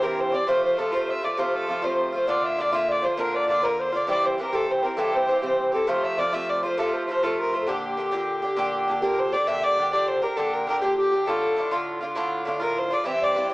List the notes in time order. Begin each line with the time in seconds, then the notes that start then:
0.02 G2 E3 C4 G4 A#4
0.19 C5
0.32 E3 C4 G4 D5
0.47 C3 F3 A3 F4 C5
0.65 C5
0.77 C3 F3 A3 F4 A4
0.92 C3 F3 A3 F4 C5
1.09 E5
1.22 F3 A3 F4 D5
1.36 C3 F3 A3 F4 C5
1.55 A4
1.67 C3 F3 A3 F4
1.82 C3 F3 A3 F4 C5 D5
1.86 C5
2.12 F3 A3 F4 C5
2.27 A#2 D3 D4 F4 D5
2.44 E5
2.54 A#2 E5
2.58 D3 D4 F4 D5
2.72 A#2 D3 D4 F4 E5
2.89 D5
3.02 D3 D4 F4 C5
3.17 A#2 D3 D4 F4 A#4
3.34 D5
3.48 A#2 D3 D4 F4 D5
3.62 A#2 D3 D4 F4 A#4
3.80 C5
3.92 D3 D4 F4 D5
3.96 D5
4.07 G2 E3 C4 G4 D5
4.24 C5
4.38 G2 E3 C4 G4 A#4
4.53 G2 E3 C4 G4 A4
4.70 C5
4.83 E3 C4 G4 A#4
4.97 G2 E3 C4 G4 A4
5.14 C5
5.27 G2 E3 C4 G4
5.42 G2 E3 C4 G4 C5
5.72 E3 C4 G4 A4
5.87 C3 F3 A3 F4 C5
6.04 E5
6.17 C3 F3 A3 F4 D5
6.32 C3 F3 A3 F4 E5
6.50 D5
6.63 F3 A3 F4 C5
6.78 C3 F3 A3 F4 A4
6.93 C5
7.08 C3 F3 A3 F4 C5
7.23 C3 F3 A3 F4 A4
7.40 A#4
7.53 F3 A3 F4 C5
7.62 A4
7.67 A#2 D3 D4 G4
7.97 A#2 D3 D4 G4
8.11 A#2 D3 D4 G4
8.42 D3 D4 G4
8.56 A#2 D3 D4 G4
8.88 A#2 D3 D4 G4
9.01 A#2 D3 D4 G4 A#4
9.19 C5
9.32 D3 D4 G4 D5
9.47 A#2 D3 D4 G4 E5
9.64 D5
9.78 A#2 D3 D4 G4
9.93 A#2 D3 D4 G4 D5
10.08 C5
10.22 D3 D4 G4 A#4
10.37 A#2 D3 D4 G4 A4
10.54 A#4
10.67 A#2 D3 D4 G4 A#4
10.81 A#2 D3 D4 G4
10.97 G4
11.12 D3 D4 G4
11.26 A2 D3 D4 F4 A4
11.56 A2 D3 D4 F4
11.71 A2 D3 D4 F4
12.01 D3 D4 F4
12.15 A2 D3 D4 F4
12.45 A2 D3 D4 F4
12.60 A2 D3 D4 F4 A#4
12.78 C5
12.90 D3 D4 F4 D5
13.04 G2 E3 C4 G4 E5
13.21 D5
13.35 G2 E3 C4 G4
13.50 C4 G4 D5